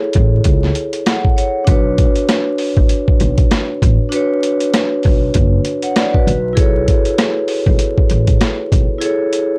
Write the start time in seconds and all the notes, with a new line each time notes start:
Already playing: E4 G#4 A4 C#5
0.13 A1, kick, closed hi-hat
0.44 C#2, kick, closed hi-hat
0.63 snare
0.75 closed hi-hat
0.93 closed hi-hat
1.06 F#5, cross-stick, snare, closed hi-hat
1.25 kick
1.36 C#5, closed hi-hat
1.64 B1 D4 F#4, kick, closed hi-hat
1.69 B4 C#5
1.98 kick, closed hi-hat
2.16 closed hi-hat
2.29 cross-stick, snare, closed hi-hat
2.58 open hi-hat
2.77 A1, kick
2.89 closed hi-hat
3.08 kick
3.20 B1, closed hi-hat
3.38 kick, closed hi-hat
3.51 cross-stick, snare, closed hi-hat
3.82 A1, kick, closed hi-hat
4.09 D4 F#4, closed hi-hat
4.13 B4 C#5
4.43 closed hi-hat
4.60 closed hi-hat
4.74 cross-stick, snare, closed hi-hat
5.03 B1, kick, open hi-hat
5.34 F#1, kick, closed hi-hat
5.65 closed hi-hat
5.82 C#5 F#5, closed hi-hat
5.96 D5, cross-stick, snare, closed hi-hat
6.14 F#4 B4, kick
6.27 B1, closed hi-hat
6.53 E4 G#4, closed hi-hat
6.57 A4 C#5, kick
6.88 kick, closed hi-hat
7.05 closed hi-hat
7.18 cross-stick, snare, closed hi-hat
7.48 open hi-hat
7.66 B1, kick
7.79 closed hi-hat
7.98 kick
8.10 A1, closed hi-hat
8.27 kick, closed hi-hat
8.41 cross-stick, snare, closed hi-hat
8.72 B1, kick, closed hi-hat
8.98 E4 G#4, closed hi-hat
9.03 A4 C#5
9.33 closed hi-hat